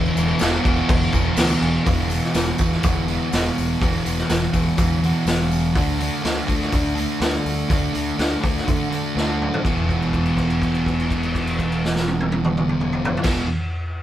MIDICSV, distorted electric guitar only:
0, 0, Header, 1, 2, 480
1, 0, Start_track
1, 0, Tempo, 486224
1, 1833, Time_signature, 4, 2, 24, 8
1, 13847, End_track
2, 0, Start_track
2, 0, Title_t, "Distorted electric guitar"
2, 0, Program_c, 0, 30
2, 0, Note_on_c, 0, 40, 80
2, 0, Note_on_c, 0, 47, 91
2, 0, Note_on_c, 0, 52, 110
2, 132, Note_off_c, 0, 52, 0
2, 144, Note_on_c, 0, 52, 69
2, 171, Note_off_c, 0, 47, 0
2, 183, Note_on_c, 0, 47, 54
2, 376, Note_off_c, 0, 40, 0
2, 387, Note_on_c, 0, 40, 101
2, 398, Note_off_c, 0, 47, 0
2, 408, Note_off_c, 0, 52, 0
2, 410, Note_on_c, 0, 47, 111
2, 420, Note_on_c, 0, 52, 105
2, 614, Note_off_c, 0, 52, 0
2, 626, Note_on_c, 0, 52, 86
2, 649, Note_off_c, 0, 47, 0
2, 661, Note_on_c, 0, 47, 71
2, 871, Note_off_c, 0, 40, 0
2, 1097, Note_off_c, 0, 52, 0
2, 1109, Note_on_c, 0, 52, 74
2, 1131, Note_off_c, 0, 47, 0
2, 1143, Note_on_c, 0, 47, 72
2, 1335, Note_on_c, 0, 40, 83
2, 1350, Note_off_c, 0, 47, 0
2, 1362, Note_on_c, 0, 47, 80
2, 1363, Note_off_c, 0, 52, 0
2, 1375, Note_on_c, 0, 52, 84
2, 1803, Note_off_c, 0, 40, 0
2, 1815, Note_on_c, 0, 40, 85
2, 1822, Note_off_c, 0, 47, 0
2, 1828, Note_off_c, 0, 52, 0
2, 1832, Note_on_c, 0, 47, 87
2, 1849, Note_on_c, 0, 52, 94
2, 2061, Note_off_c, 0, 52, 0
2, 2065, Note_on_c, 0, 52, 68
2, 2097, Note_off_c, 0, 47, 0
2, 2108, Note_on_c, 0, 47, 53
2, 2291, Note_off_c, 0, 40, 0
2, 2295, Note_on_c, 0, 40, 74
2, 2303, Note_off_c, 0, 47, 0
2, 2315, Note_on_c, 0, 47, 78
2, 2327, Note_off_c, 0, 52, 0
2, 2330, Note_on_c, 0, 52, 79
2, 2542, Note_off_c, 0, 52, 0
2, 2546, Note_on_c, 0, 52, 76
2, 2565, Note_off_c, 0, 47, 0
2, 2576, Note_on_c, 0, 47, 61
2, 2779, Note_off_c, 0, 40, 0
2, 2783, Note_on_c, 0, 40, 91
2, 2799, Note_off_c, 0, 47, 0
2, 2809, Note_off_c, 0, 52, 0
2, 2811, Note_on_c, 0, 47, 82
2, 2821, Note_on_c, 0, 52, 100
2, 3025, Note_off_c, 0, 52, 0
2, 3037, Note_on_c, 0, 52, 83
2, 3059, Note_off_c, 0, 47, 0
2, 3071, Note_on_c, 0, 47, 68
2, 3247, Note_off_c, 0, 40, 0
2, 3259, Note_on_c, 0, 40, 71
2, 3270, Note_off_c, 0, 47, 0
2, 3282, Note_on_c, 0, 47, 86
2, 3286, Note_off_c, 0, 52, 0
2, 3298, Note_on_c, 0, 52, 76
2, 3731, Note_off_c, 0, 40, 0
2, 3743, Note_on_c, 0, 40, 87
2, 3757, Note_off_c, 0, 47, 0
2, 3769, Note_on_c, 0, 47, 76
2, 3770, Note_off_c, 0, 52, 0
2, 3782, Note_on_c, 0, 52, 94
2, 3976, Note_off_c, 0, 52, 0
2, 3988, Note_on_c, 0, 52, 66
2, 4016, Note_off_c, 0, 47, 0
2, 4028, Note_on_c, 0, 47, 53
2, 4223, Note_off_c, 0, 40, 0
2, 4234, Note_on_c, 0, 40, 81
2, 4240, Note_off_c, 0, 47, 0
2, 4252, Note_on_c, 0, 47, 78
2, 4253, Note_off_c, 0, 52, 0
2, 4265, Note_on_c, 0, 52, 82
2, 4460, Note_off_c, 0, 52, 0
2, 4472, Note_on_c, 0, 52, 66
2, 4496, Note_off_c, 0, 47, 0
2, 4508, Note_on_c, 0, 47, 61
2, 4697, Note_off_c, 0, 40, 0
2, 4709, Note_on_c, 0, 40, 86
2, 4719, Note_off_c, 0, 47, 0
2, 4730, Note_on_c, 0, 47, 98
2, 4731, Note_off_c, 0, 52, 0
2, 4743, Note_on_c, 0, 52, 101
2, 4936, Note_off_c, 0, 52, 0
2, 4948, Note_on_c, 0, 52, 82
2, 4969, Note_off_c, 0, 47, 0
2, 4981, Note_on_c, 0, 47, 65
2, 5181, Note_off_c, 0, 40, 0
2, 5193, Note_off_c, 0, 47, 0
2, 5193, Note_on_c, 0, 40, 77
2, 5204, Note_on_c, 0, 47, 81
2, 5211, Note_off_c, 0, 52, 0
2, 5223, Note_on_c, 0, 52, 81
2, 5657, Note_off_c, 0, 40, 0
2, 5661, Note_off_c, 0, 47, 0
2, 5665, Note_on_c, 0, 50, 97
2, 5672, Note_off_c, 0, 52, 0
2, 5684, Note_on_c, 0, 57, 100
2, 5696, Note_on_c, 0, 62, 98
2, 5909, Note_off_c, 0, 62, 0
2, 5913, Note_on_c, 0, 62, 66
2, 5940, Note_off_c, 0, 57, 0
2, 5944, Note_on_c, 0, 57, 56
2, 6140, Note_off_c, 0, 50, 0
2, 6144, Note_on_c, 0, 50, 69
2, 6160, Note_off_c, 0, 57, 0
2, 6164, Note_on_c, 0, 57, 70
2, 6173, Note_off_c, 0, 62, 0
2, 6177, Note_on_c, 0, 62, 86
2, 6384, Note_off_c, 0, 62, 0
2, 6388, Note_on_c, 0, 62, 70
2, 6412, Note_off_c, 0, 57, 0
2, 6416, Note_on_c, 0, 57, 54
2, 6611, Note_off_c, 0, 50, 0
2, 6615, Note_on_c, 0, 50, 81
2, 6627, Note_off_c, 0, 57, 0
2, 6639, Note_off_c, 0, 62, 0
2, 6639, Note_on_c, 0, 57, 92
2, 6651, Note_on_c, 0, 62, 93
2, 6848, Note_off_c, 0, 62, 0
2, 6860, Note_on_c, 0, 62, 78
2, 6892, Note_off_c, 0, 57, 0
2, 6904, Note_on_c, 0, 57, 57
2, 7096, Note_off_c, 0, 50, 0
2, 7108, Note_on_c, 0, 50, 78
2, 7110, Note_off_c, 0, 57, 0
2, 7122, Note_on_c, 0, 57, 83
2, 7133, Note_off_c, 0, 62, 0
2, 7145, Note_on_c, 0, 62, 71
2, 7580, Note_off_c, 0, 50, 0
2, 7592, Note_on_c, 0, 50, 78
2, 7594, Note_off_c, 0, 57, 0
2, 7606, Note_on_c, 0, 57, 80
2, 7611, Note_off_c, 0, 62, 0
2, 7623, Note_on_c, 0, 62, 89
2, 7816, Note_off_c, 0, 62, 0
2, 7828, Note_on_c, 0, 62, 62
2, 7850, Note_off_c, 0, 57, 0
2, 7862, Note_on_c, 0, 57, 50
2, 8056, Note_off_c, 0, 50, 0
2, 8068, Note_on_c, 0, 50, 73
2, 8070, Note_off_c, 0, 57, 0
2, 8082, Note_on_c, 0, 57, 74
2, 8090, Note_off_c, 0, 62, 0
2, 8102, Note_on_c, 0, 62, 85
2, 8290, Note_off_c, 0, 62, 0
2, 8302, Note_on_c, 0, 62, 67
2, 8327, Note_off_c, 0, 57, 0
2, 8338, Note_on_c, 0, 57, 61
2, 8527, Note_off_c, 0, 50, 0
2, 8538, Note_on_c, 0, 50, 91
2, 8552, Note_off_c, 0, 57, 0
2, 8564, Note_on_c, 0, 57, 90
2, 8569, Note_off_c, 0, 62, 0
2, 8581, Note_on_c, 0, 62, 83
2, 8776, Note_off_c, 0, 62, 0
2, 8788, Note_on_c, 0, 62, 65
2, 8813, Note_off_c, 0, 57, 0
2, 8825, Note_on_c, 0, 57, 62
2, 9020, Note_off_c, 0, 50, 0
2, 9032, Note_on_c, 0, 50, 66
2, 9043, Note_off_c, 0, 57, 0
2, 9055, Note_on_c, 0, 57, 66
2, 9059, Note_off_c, 0, 62, 0
2, 9071, Note_on_c, 0, 62, 74
2, 9499, Note_off_c, 0, 50, 0
2, 9511, Note_off_c, 0, 57, 0
2, 9511, Note_on_c, 0, 40, 88
2, 9519, Note_off_c, 0, 62, 0
2, 9528, Note_on_c, 0, 47, 84
2, 9544, Note_on_c, 0, 52, 91
2, 13015, Note_off_c, 0, 40, 0
2, 13024, Note_off_c, 0, 47, 0
2, 13032, Note_off_c, 0, 52, 0
2, 13048, Note_on_c, 0, 40, 81
2, 13076, Note_on_c, 0, 47, 92
2, 13093, Note_on_c, 0, 52, 85
2, 13278, Note_off_c, 0, 40, 0
2, 13292, Note_off_c, 0, 47, 0
2, 13301, Note_off_c, 0, 52, 0
2, 13847, End_track
0, 0, End_of_file